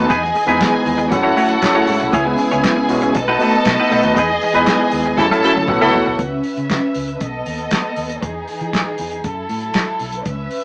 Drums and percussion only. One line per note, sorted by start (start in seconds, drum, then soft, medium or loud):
0.10 kick loud
0.10 closed hi-hat medium
0.24 snare soft
0.35 open hi-hat medium
0.49 closed hi-hat soft
0.61 kick loud
0.61 snare loud
0.61 clap medium
0.61 closed hi-hat medium
0.86 open hi-hat medium
0.99 closed hi-hat soft
1.12 kick loud
1.12 closed hi-hat medium
1.37 open hi-hat medium
1.49 closed hi-hat soft
1.62 kick loud
1.62 snare loud
1.62 clap loud
1.62 closed hi-hat medium
1.87 open hi-hat medium
2.00 closed hi-hat medium
2.13 kick loud
2.13 closed hi-hat medium
2.38 open hi-hat medium
2.51 closed hi-hat soft
2.64 kick loud
2.64 snare loud
2.64 clap medium
2.64 closed hi-hat medium
2.89 open hi-hat medium
3.01 closed hi-hat soft
3.15 kick loud
3.15 closed hi-hat medium
3.40 open hi-hat medium
3.52 closed hi-hat soft
3.65 kick loud
3.65 snare loud
3.65 clap loud
3.65 closed hi-hat medium
3.91 open hi-hat medium
4.03 closed hi-hat medium
4.16 kick loud
4.16 closed hi-hat medium
4.41 open hi-hat medium
4.54 closed hi-hat soft
4.67 kick loud
4.67 snare loud
4.67 clap medium
4.67 closed hi-hat medium
4.91 open hi-hat medium
5.04 closed hi-hat soft
5.18 kick loud
5.18 snare medium
5.31 snare medium
5.55 high tom medium
5.68 kick loud
5.68 mid tom loud
5.93 floor tom loud
6.06 floor tom loud
6.19 kick loud
6.19 closed hi-hat medium
6.43 open hi-hat soft
6.57 closed hi-hat soft
6.70 kick loud
6.70 snare loud
6.70 clap medium
6.70 closed hi-hat medium
6.94 open hi-hat medium
7.08 closed hi-hat soft
7.20 kick loud
7.20 closed hi-hat medium
7.46 open hi-hat medium
7.58 closed hi-hat soft
7.71 kick loud
7.71 snare loud
7.71 clap loud
7.71 closed hi-hat medium
7.96 open hi-hat medium
8.09 closed hi-hat soft
8.22 kick loud
8.22 closed hi-hat medium
8.48 open hi-hat medium
8.61 closed hi-hat soft
8.73 kick loud
8.73 snare loud
8.73 clap medium
8.73 closed hi-hat medium
8.98 open hi-hat medium
9.11 closed hi-hat soft
9.24 kick loud
9.24 closed hi-hat medium
9.49 open hi-hat medium
9.61 closed hi-hat soft
9.74 kick loud
9.74 snare loud
9.74 clap loud
9.74 closed hi-hat medium
9.99 open hi-hat medium
10.12 closed hi-hat soft
10.25 kick loud
10.25 closed hi-hat medium
10.51 open hi-hat medium